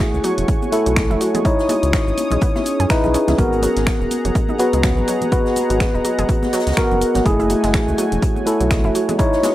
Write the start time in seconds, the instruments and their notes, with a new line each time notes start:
Already playing: tine electric piano A3 E4 G#4, analog synth pad A3 F#5 G#5 C#6, ambient pad F#4 C#5 D#5
0.00 finger snap, kick, closed hi-hat, shaker
0.14 analog synth bass C#2, shaker
0.23 synth arpeggio sound F#3, closed hi-hat, open hi-hat, high conga, shaker
0.38 analog synth bass E1, closed hi-hat, low conga, shaker
0.48 kick, closed hi-hat, shaker
0.62 high conga, shaker
0.72 tine electric piano A3 E4 A4, closed hi-hat, open hi-hat, shaker
0.86 analog synth bass B1, synth arpeggio sound F#3, closed hi-hat, shaker
0.96 synth arpeggio sound G#3, finger snap, kick, snare, closed hi-hat, high conga, shaker
1.10 analog synth bass F#1, synth arpeggio sound E4, low conga, shaker
1.21 synth arpeggio sound F#3, closed hi-hat, open hi-hat, shaker
1.34 synth arpeggio sound G#3, closed hi-hat, high conga, low conga, shaker
1.45 synth arpeggio sound G#3, ambient pad C#4, tine electric piano D#4 E4 C#5, analog synth pad C#5 D#6, kick, closed hi-hat, shaker
1.59 snare, shaker
1.69 synth arpeggio sound G#3, closed hi-hat, open hi-hat, high conga, shaker
1.83 analog synth bass C#2, closed hi-hat, shaker
1.93 finger snap, kick, snare, closed hi-hat, shaker
2.07 analog synth bass G#1, shaker
2.18 closed hi-hat, open hi-hat, high conga, shaker
2.31 analog synth bass B1, synth arpeggio sound G#3, ambient pad G#4, closed hi-hat, low conga, shaker
2.41 synth arpeggio sound B3, kick, closed hi-hat, shaker
2.55 synth arpeggio sound E4, snare, high conga, shaker
2.65 closed hi-hat, open hi-hat, shaker
2.80 analog synth bass F#2, synth arpeggio sound G#4, closed hi-hat, shaker
2.89 tine electric piano D#4 E4 B4, finger snap, kick, snare, closed hi-hat, high conga, shaker
3.04 analog synth bass B1, synth arpeggio sound G#3, low conga, shaker
3.14 synth arpeggio sound C#4, closed hi-hat, open hi-hat, shaker
3.28 analog synth bass C#2, synth arpeggio sound E4, snare, closed hi-hat, high conga, low conga, shaker
3.38 analog synth bass G#1, synth arpeggio sound F#3, tine electric piano B3 F#4 A#4, analog synth pad G#4 F#5 A#5, kick, closed hi-hat, shaker
3.52 closed hi-hat, shaker
3.62 synth arpeggio sound F#3, closed hi-hat, open hi-hat, high conga, shaker
3.76 analog synth bass G#1, snare, closed hi-hat, shaker
3.87 finger snap, kick, snare, closed hi-hat, shaker
4.01 analog synth bass D#1, ambient pad D#5, shaker
4.11 closed hi-hat, open hi-hat, high conga, shaker
4.25 analog synth bass F#1, synth arpeggio sound F#3, closed hi-hat, low conga, shaker
4.35 synth arpeggio sound G#3, kick, closed hi-hat, shaker
4.49 synth arpeggio sound D#4, high conga, shaker
4.58 synth arpeggio sound F#3, tine electric piano B3 F#4 B4, closed hi-hat, open hi-hat, shaker
4.73 analog synth bass C#2, synth arpeggio sound G#3, closed hi-hat, shaker
4.83 synth arpeggio sound F#3, finger snap, kick, snare, closed hi-hat, high conga, shaker
4.97 analog synth bass G#1, low conga, shaker
5.08 synth arpeggio sound F#3, closed hi-hat, open hi-hat, shaker
5.21 closed hi-hat, high conga, low conga, shaker
5.32 tine electric piano B3 F#4 B4, kick, closed hi-hat, shaker
5.46 snare, shaker
5.56 closed hi-hat, open hi-hat, high conga, shaker
5.70 analog synth bass G#1, synth arpeggio sound F#3, closed hi-hat, shaker
5.80 synth arpeggio sound G#3, finger snap, kick, snare, closed hi-hat, shaker
5.94 analog synth bass D#1, synth arpeggio sound D#4, shaker
6.04 synth arpeggio sound F#3, closed hi-hat, open hi-hat, high conga, shaker
6.19 analog synth bass F#1, synth arpeggio sound G#3, closed hi-hat, low conga, shaker
6.29 synth arpeggio sound F#3, kick, closed hi-hat, shaker
6.43 snare, high conga, shaker
6.53 synth arpeggio sound F#3, snare, closed hi-hat, open hi-hat, shaker
6.60 snare, closed hi-hat
6.66 analog synth bass C#2, snare, closed hi-hat, shaker
6.72 snare, closed hi-hat
6.77 tine electric piano B3 F#4 A#4, finger snap, kick, snare, closed hi-hat, high conga, shaker
6.91 analog synth bass F#1, low conga, shaker
7.01 closed hi-hat, open hi-hat, shaker
7.15 analog synth bass G#1, synth arpeggio sound F#3, snare, closed hi-hat, high conga, low conga, shaker
7.25 analog synth bass F#1, synth arpeggio sound G#3, tine electric piano A3 E4 G#4, analog synth pad A3 G#5, ambient pad F#4, kick, closed hi-hat, shaker
7.40 synth arpeggio sound E4, closed hi-hat, shaker
7.50 synth arpeggio sound F#3, closed hi-hat, open hi-hat, high conga, shaker
7.64 analog synth bass F#1, synth arpeggio sound G#3, snare, closed hi-hat, shaker
7.74 synth arpeggio sound F#3, finger snap, kick, snare, closed hi-hat, shaker
7.88 analog synth bass C#2, shaker
7.98 synth arpeggio sound F#3, ambient pad C#5, closed hi-hat, open hi-hat, high conga, shaker
8.12 analog synth bass E1, closed hi-hat, low conga, shaker
8.22 kick, closed hi-hat, shaker
8.36 high conga, shaker
8.46 tine electric piano A3 E4 A4, closed hi-hat, open hi-hat, shaker
8.60 analog synth bass B1, synth arpeggio sound F#3, closed hi-hat, shaker
8.71 synth arpeggio sound G#3, finger snap, kick, snare, closed hi-hat, high conga, shaker
8.84 analog synth bass F#1, synth arpeggio sound E4, low conga, shaker
8.95 synth arpeggio sound F#3, closed hi-hat, open hi-hat, shaker
9.09 synth arpeggio sound G#3, closed hi-hat, high conga, low conga, shaker
9.19 synth arpeggio sound G#3, ambient pad C#4, tine electric piano D#4 E4 C#5, analog synth pad B4 D#5 C#6, kick, closed hi-hat, shaker
9.33 snare, shaker
9.43 synth arpeggio sound G#3, snare, closed hi-hat, open hi-hat, high conga, shaker